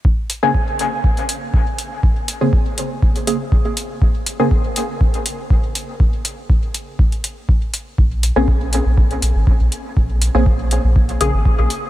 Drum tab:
HH |--x---x--xx---x-|--x---x--xx---x-|--x---x--xx---x-|--x---x--xx---x-|
BD |o---o---o---o---|o---o---o---o---|o---o---o---o---|o---o---o---o---|

HH |--x---x--xx---x-|--x---x--xx---x-|
BD |o---o---o---o---|o---o---o---o---|